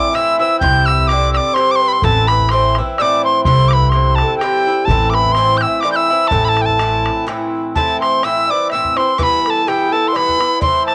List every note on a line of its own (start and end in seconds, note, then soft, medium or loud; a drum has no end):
0.00 0.12 A2 medium
0.00 0.13 E3 medium
0.00 0.14 C4 medium
0.00 0.15 E4 medium
0.00 0.11 D5 medium
0.00 0.16 D6 medium
0.11 0.39 A2 medium
0.11 0.39 E3 medium
0.11 0.39 C4 medium
0.11 0.57 E5 medium
0.11 0.39 E6 loud
0.11 bodhran medium
0.16 0.38 E4 medium
0.39 0.61 E3 soft
0.39 0.61 C4 soft
0.39 0.61 E4 soft
0.39 0.59 E6 medium
0.59 1.37 C2 medium
0.59 1.08 G2 medium
0.59 1.09 D3 medium
0.59 1.11 C4 medium
0.59 0.87 G5 medium
0.59 0.87 G6 loud
0.59 bodhran medium
0.63 1.11 E4 medium
0.86 0.92 G5 medium
0.86 1.09 E6 loud
0.86 bodhran medium
0.91 1.08 E5 medium
0.99 bodhran soft
1.07 1.54 G2 medium
1.07 1.56 D3 medium
1.07 1.57 C4 medium
1.07 1.57 E4 medium
1.07 1.14 E5 medium
1.07 1.32 D6 medium
1.07 bodhran medium
1.13 1.31 D5 medium
1.32 1.55 D5 medium
1.32 1.38 E6 medium
1.32 bodhran medium
1.37 1.55 D6 medium
1.53 2.03 G2 medium
1.53 2.03 D3 soft
1.53 1.82 C5 medium
1.53 1.72 C6 loud
1.53 bodhran medium
1.58 2.04 C4 medium
1.58 2.04 E4 medium
1.71 1.76 D6 loud
1.75 1.89 C6 loud
1.81 2.01 B4 medium
1.88 1.93 B5 loud
1.93 2.06 C6 loud
2.02 2.79 A1 loud
2.02 2.50 A2 medium
2.02 2.52 E3 medium
2.02 2.52 C4 medium
2.02 2.53 E4 medium
2.02 2.26 A4 medium
2.02 2.29 A5 loud
2.02 bodhran medium
2.27 2.50 B4 medium
2.27 2.52 B5 medium
2.27 bodhran medium
2.39 bodhran soft
2.49 2.77 A2 medium
2.49 2.77 E3 medium
2.49 2.75 C5 medium
2.49 2.77 C6 medium
2.49 bodhran medium
2.53 2.78 C4 medium
2.53 2.77 E4 medium
2.75 3.00 C4 soft
2.75 2.99 E4 soft
2.75 bodhran medium
2.80 2.99 E3 soft
2.98 3.46 A2 medium
2.98 3.46 E3 medium
2.98 3.47 C4 medium
2.98 3.47 E4 medium
2.98 3.25 D5 medium
2.98 3.22 D6 loud
2.98 3.03 E6 medium
2.98 bodhran medium
3.24 3.46 C5 medium
3.24 3.44 C6 medium
3.44 4.21 C2 medium
3.44 3.92 G2 medium
3.44 3.93 D3 medium
3.44 3.94 C4 medium
3.44 3.95 E4 medium
3.44 3.76 C5 medium
3.44 3.70 C6 loud
3.44 bodhran medium
3.68 3.74 D6 medium
3.68 bodhran medium
3.73 3.94 B4 medium
3.73 3.91 B5 medium
3.82 bodhran soft
3.90 4.40 G2 medium
3.90 4.17 C6 loud
3.90 bodhran medium
3.94 4.41 D3 medium
3.94 4.42 C4 medium
3.94 4.43 E4 medium
3.94 4.18 C5 medium
4.16 4.37 A5 medium
4.16 bodhran medium
4.22 4.45 A4 medium
4.38 4.67 G2 medium
4.38 4.87 G5 loud
4.38 bodhran medium
4.42 4.67 D3 medium
4.42 4.67 C4 medium
4.42 4.66 E4 medium
4.42 4.91 G4 medium
4.67 4.90 D3 soft
4.67 4.90 C4 soft
4.67 4.89 E4 soft
4.85 5.64 A1 medium
4.85 5.35 A2 medium
4.85 5.11 A5 loud
4.85 bodhran medium
4.89 5.37 E3 medium
4.89 5.37 C4 medium
4.89 5.38 E4 medium
4.89 5.15 A4 medium
5.10 5.15 D6 medium
5.10 bodhran medium
5.14 5.38 B4 medium
5.14 5.34 B5 medium
5.25 bodhran soft
5.32 5.59 C6 loud
5.32 bodhran medium
5.36 5.82 A2 medium
5.36 5.84 E3 medium
5.36 5.85 C4 medium
5.36 5.86 E4 medium
5.36 5.62 C5 medium
5.57 5.63 G6 medium
5.57 bodhran medium
5.62 5.68 G5 medium
5.62 5.82 E6 medium
5.67 5.86 E5 medium
5.81 6.10 A2 medium
5.81 6.10 E3 medium
5.81 5.98 D5 medium
5.81 5.91 D6 loud
5.81 bodhran medium
5.85 6.10 C4 medium
5.85 6.09 E4 medium
5.92 6.29 E6 loud
5.92 5.97 G6 medium
5.96 6.33 E5 medium
6.10 6.31 E3 soft
6.10 6.30 C4 soft
6.10 6.32 E4 soft
6.28 6.78 A2 medium
6.28 6.46 A5 loud
6.28 bodhran medium
6.32 7.08 A1 medium
6.32 6.80 E3 medium
6.32 6.80 C4 medium
6.32 6.81 E4 medium
6.32 7.27 A4 medium
6.45 6.50 B5 loud
6.49 6.63 A5 loud
6.57 bodhran medium
6.62 6.67 G5 loud
6.66 7.25 A5 loud
6.66 bodhran soft
6.79 7.25 A2 medium
6.79 7.27 E3 medium
6.79 7.27 C4 medium
6.79 7.28 E4 medium
6.79 bodhran medium
7.06 bodhran medium
7.27 7.74 A2 medium
7.27 7.76 E3 medium
7.27 7.76 C4 medium
7.27 7.77 E4 medium
7.27 bodhran medium
7.75 8.23 A2 medium
7.75 8.24 E3 medium
7.75 8.24 C4 medium
7.75 8.25 E4 medium
7.75 8.02 A4 medium
7.75 7.99 A5 loud
7.75 bodhran medium
8.00 8.25 C5 medium
8.00 8.26 C6 loud
8.00 bodhran medium
8.23 8.49 A2 medium
8.23 8.49 E3 medium
8.23 8.50 C4 medium
8.23 8.49 E4 medium
8.23 8.48 E5 medium
8.23 8.52 E6 loud
8.23 bodhran medium
8.48 8.72 E3 soft
8.48 8.72 C4 soft
8.48 8.71 E4 soft
8.48 8.72 D5 medium
8.48 8.70 D6 medium
8.70 8.97 A2 medium
8.70 8.98 E3 soft
8.70 8.97 C4 medium
8.70 8.98 E5 loud
8.70 8.99 E6 loud
8.70 bodhran medium
8.74 8.96 E4 medium
8.84 bodhran soft
8.96 9.18 E3 soft
8.96 9.19 C4 soft
8.96 9.18 E4 soft
8.96 9.16 C5 medium
8.96 9.20 C6 medium
8.96 bodhran medium
9.17 9.66 G2 medium
9.17 9.67 E3 medium
9.17 9.67 B3 medium
9.17 9.69 E4 medium
9.17 9.42 B4 medium
9.17 9.24 D6 loud
9.17 bodhran medium
9.23 9.46 B5 loud
9.43 9.64 A4 medium
9.43 9.48 B4 medium
9.43 9.51 B5 medium
9.43 bodhran medium
9.50 9.69 A5 medium
9.65 9.93 G2 medium
9.65 9.93 E3 medium
9.65 9.92 B3 medium
9.65 9.90 G4 medium
9.65 9.70 A4 medium
9.65 9.94 G5 medium
9.65 bodhran medium
9.69 9.92 E4 medium
9.90 10.15 B3 soft
9.90 10.14 E4 medium
9.90 10.14 A4 medium
9.90 10.09 A5 medium
9.95 10.14 E3 soft
10.08 10.17 C6 medium
10.13 10.40 G2 medium
10.13 10.40 E3 medium
10.13 10.39 B3 medium
10.13 10.38 E4 medium
10.13 10.62 B4 medium
10.13 10.18 D5 medium
10.13 10.61 B5 loud
10.13 bodhran medium
10.29 bodhran soft
10.39 10.61 E3 soft
10.39 10.62 B3 soft
10.39 10.61 E4 soft
10.39 bodhran medium
10.60 10.95 A2 medium
10.60 10.95 E3 medium
10.60 10.95 C4 medium
10.60 10.95 E4 medium
10.60 10.66 D5 medium
10.60 10.86 C6 loud
10.60 bodhran medium
10.65 10.95 C5 medium
10.87 10.95 A5 medium
10.87 bodhran medium